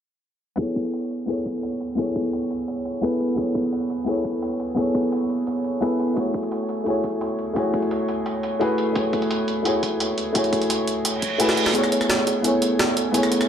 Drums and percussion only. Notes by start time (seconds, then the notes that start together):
0.59 kick, closed hi-hat
0.76 kick, closed hi-hat
0.85 closed hi-hat
0.93 closed hi-hat
1.11 closed hi-hat
1.28 closed hi-hat
1.46 kick, closed hi-hat
1.63 closed hi-hat
1.81 closed hi-hat
1.98 kick, closed hi-hat
2.15 kick, closed hi-hat
2.24 closed hi-hat
2.33 closed hi-hat
2.50 closed hi-hat
2.68 closed hi-hat
2.85 closed hi-hat
3.03 closed hi-hat
3.20 closed hi-hat
3.38 kick, closed hi-hat
3.55 kick, closed hi-hat
3.64 closed hi-hat
3.72 closed hi-hat
3.90 closed hi-hat
4.07 closed hi-hat
4.25 kick, closed hi-hat
4.42 closed hi-hat
4.60 closed hi-hat
4.77 kick, closed hi-hat
4.95 kick, closed hi-hat
5.04 closed hi-hat
5.12 closed hi-hat
5.30 closed hi-hat
5.47 closed hi-hat
5.64 closed hi-hat
5.82 closed hi-hat
5.99 closed hi-hat
6.17 kick, closed hi-hat
6.34 kick, closed hi-hat
6.43 closed hi-hat
6.52 closed hi-hat
6.69 closed hi-hat
6.86 closed hi-hat
7.04 kick, closed hi-hat
7.21 closed hi-hat
7.39 closed hi-hat
7.56 kick, closed hi-hat
7.74 kick, closed hi-hat
7.82 closed hi-hat
7.91 closed hi-hat
8.09 closed hi-hat
8.26 closed hi-hat
8.43 closed hi-hat
8.61 closed hi-hat
8.78 closed hi-hat
8.96 kick, closed hi-hat
9.13 kick, closed hi-hat
9.22 closed hi-hat
9.31 closed hi-hat
9.48 closed hi-hat
9.65 closed hi-hat
9.83 kick, closed hi-hat
10.00 closed hi-hat
10.18 closed hi-hat
10.35 kick, closed hi-hat
10.44 closed hi-hat
10.53 kick, closed hi-hat
10.62 closed hi-hat
10.70 closed hi-hat
10.88 closed hi-hat
11.05 closed hi-hat
11.22 kick, closed hi-hat
11.40 closed hi-hat
11.49 snare
11.57 closed hi-hat
11.66 snare, closed hi-hat
11.75 closed hi-hat
11.84 cross-stick, closed hi-hat
11.92 closed hi-hat
12.01 cross-stick, closed hi-hat
12.10 snare, closed hi-hat
12.27 closed hi-hat
12.44 closed hi-hat
12.62 closed hi-hat
12.79 snare, closed hi-hat
12.97 closed hi-hat
13.14 closed hi-hat
13.23 cross-stick, closed hi-hat
13.32 closed hi-hat
13.41 cross-stick, closed hi-hat